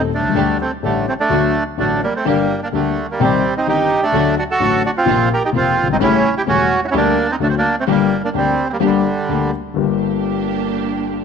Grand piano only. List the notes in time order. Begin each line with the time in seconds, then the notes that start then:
0.19 B1
0.24 C2
0.30 C#2
0.35 D2 D3 G3 A3 G4
0.83 A1 A2 D3 G3 A3 G4
1.29 D2 D3 F#3 A3 F#4
1.78 A1 A2 D3 F#3 A3 F#4
2.25 G1 G2 D3 G3 A#3 G4
2.72 D2 D3 G3 A#3 G4
3.20 C2 C3 D#3 G3 C4 G4
3.67 G1 G2 D#3 G3 C4 G4
4.12 D2 D3 F#3 A3 F#4
4.60 A1 A2 D3 F#3 A3 F#4
5.06 A#1 A#2 C3 F3 A#3 F4
5.53 F1 F2 C3 F3 A#3 F4
5.83 F#1
5.89 G1
5.94 G#1
6.00 A1 A2 C#3 G3 A3 E4
6.46 E1 E2 C#3 G3 A3 E4
6.94 D2 D3 G3 A#3 G4
7.40 D2 D3 F#3 A3 F#4
7.87 G1 G2 D3 G3 A#3 G4
8.34 D2 D3 G3 A#3 G4
8.80 G1 G2 D3 G3 A#3 G4
9.29 D2 D3 G3 A#3 G4
9.74 G1 G2 D3 G3 A#3 G4